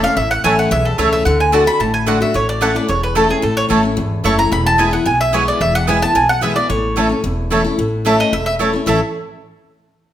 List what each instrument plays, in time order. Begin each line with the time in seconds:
Already playing: steel-string acoustic guitar E2
0.03 steel-string acoustic guitar C#4 E4, mandolin F5
0.17 upright bass A1, steel-string acoustic guitar A2, mandolin E5
0.31 mandolin F#5
0.44 upright bass A1, steel-string acoustic guitar E3 A3 C#4 E4, mandolin A3 E4 C#5 G#5 A5
0.59 mandolin F#5
0.71 upright bass B1, steel-string acoustic guitar E2, mandolin E5
0.85 mandolin A4
0.98 upright bass C#2, steel-string acoustic guitar E3 A3 C#4 E4, mandolin A3 E4 C#5 A5
1.13 mandolin E5
1.25 upright bass D2, steel-string acoustic guitar D3, mandolin F#5
1.40 mandolin G#5
1.52 steel-string acoustic guitar D3 A3 D4 F#4, mandolin A3 F#4 D5 F#5 A5
1.66 steel-string acoustic guitar D4 F#4, mandolin B5
1.80 upright bass A1, steel-string acoustic guitar A2, mandolin A5
1.94 mandolin G#5
2.06 steel-string acoustic guitar D3 A3 D4 F#4, mandolin A3 F#4 D5 F#5
2.21 steel-string acoustic guitar D4 F#4, mandolin E5
2.34 upright bass A1, steel-string acoustic guitar A2, mandolin C#5
2.49 mandolin D5
2.61 steel-string acoustic guitar E3 A3 C#4 E4, mandolin A3 E4 C#5 F#5 A5
2.75 steel-string acoustic guitar C#4 E4, mandolin D5
2.88 upright bass E1, steel-string acoustic guitar E2, mandolin C#5
3.03 mandolin B4
3.15 steel-string acoustic guitar E3 A3 C#4 E4, mandolin A3 E4 A4 C#5 A5
3.29 steel-string acoustic guitar C#4 E4, mandolin G#4
3.42 upright bass A1, steel-string acoustic guitar A2, mandolin A4
3.57 mandolin C#5
3.69 upright bass A1, steel-string acoustic guitar E3 A3 C#4 E4, mandolin A3 E4 C#5 A5
3.83 steel-string acoustic guitar C#4 E4
3.97 upright bass G#1, steel-string acoustic guitar E2
4.24 upright bass F#1, steel-string acoustic guitar E3 A3 C#4 E4, mandolin A3 E4 C#5 A5 C#6
4.38 steel-string acoustic guitar C#4 E4, mandolin A#5
4.52 upright bass E1, steel-string acoustic guitar E2, mandolin B5
4.66 mandolin A5
4.78 steel-string acoustic guitar E3 G#3 B3 E4, mandolin B3 E4 B4 G#5
4.91 steel-string acoustic guitar B3 E4, mandolin F#5
5.05 upright bass B1, steel-string acoustic guitar B2, mandolin G#5
5.21 mandolin E5
5.33 steel-string acoustic guitar E3 G#3 B3 E4, mandolin B3 E4 B4 C#5 G#5
5.48 mandolin D5
5.61 upright bass E1, steel-string acoustic guitar E2, mandolin E5
5.75 mandolin F#5
5.87 steel-string acoustic guitar E3 G#3 B3 E4, mandolin B3 E4 B4 G#5
6.02 steel-string acoustic guitar B3 E4, mandolin A5
6.15 upright bass B1, steel-string acoustic guitar B2, mandolin G#5
6.29 mandolin F#5
6.41 steel-string acoustic guitar E3 G#3 B3 E4, mandolin B3 E4 B4 E5 G#5
6.56 steel-string acoustic guitar B3 E4, mandolin D5
6.70 upright bass A1, steel-string acoustic guitar A2, mandolin C#5
6.96 steel-string acoustic guitar E3 A3 C#4 E4, mandolin A3 E4 C#5 A5
7.09 steel-string acoustic guitar C#4 E4
7.24 upright bass E1, steel-string acoustic guitar E2
7.50 steel-string acoustic guitar E3 A3 C#4 E4, mandolin A3 E4 C#5 A5
7.64 steel-string acoustic guitar C#4 E4
7.78 upright bass A1, steel-string acoustic guitar A2
8.05 steel-string acoustic guitar E3 A3 C#4 E4, mandolin A3 E4 C#5 E5 A5
8.20 mandolin D#5
8.33 upright bass E1, steel-string acoustic guitar E2, mandolin E5
8.46 mandolin E5
8.59 steel-string acoustic guitar E3 A3 C#4 E4, mandolin A3 E4 C#5 A5
8.73 steel-string acoustic guitar C#4 E4
8.86 upright bass A1, steel-string acoustic guitar A2 E3 A3 C#4 E4, mandolin A3 E4 C#5 E5 A5